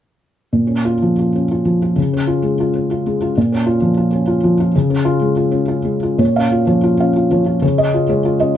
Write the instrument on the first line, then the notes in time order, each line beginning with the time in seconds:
felt piano
0.53 A#2
0.67 C#4
0.85 F4
1.02 F3
1.19 F4
1.36 C#4
1.51 F4
1.65 F3
1.82 F4
1.96 C#3
2.13 C#4
2.27 F4
2.43 G#3
2.60 F4
2.75 C#4
2.91 F4
3.07 G#3
3.22 F4
3.37 A#2
3.52 C#4
3.66 F4
3.82 F3
3.97 F4
4.13 C#4
4.27 F4
4.44 F3
4.60 F4
4.76 C#3
4.90 C#4
5.05 F4
5.21 G#3
5.37 F4
5.51 C#4
5.68 F4
5.85 G#3
6.03 F4
6.18 A#2 C#5
6.36 C#4 F5
6.52 F4
6.67 F3 C#5
6.83 F4
7.00 C#4 F5
7.16 F4
7.31 F3 C#5
7.46 F4
7.62 C#3 C#5
7.78 C#4 D#5
7.94 F4
8.09 G#3 C#5
8.25 F4
8.40 C#4 D#5